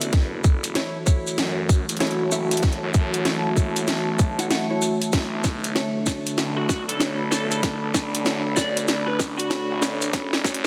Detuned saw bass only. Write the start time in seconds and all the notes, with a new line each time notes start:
Already playing: A1
0.13 F#1
0.44 F#1
1.38 F#2
1.89 F#1
2.53 F1
2.83 F#2
3.26 C#2
3.46 F#1
3.88 B1
5.13 B1
5.44 B1
6.38 B1
6.89 B1
7.82 B1
8.26 F#2
8.45 B1
8.88 B1
9.08 A1
9.71 A1
10.13 F#1
10.45 F#1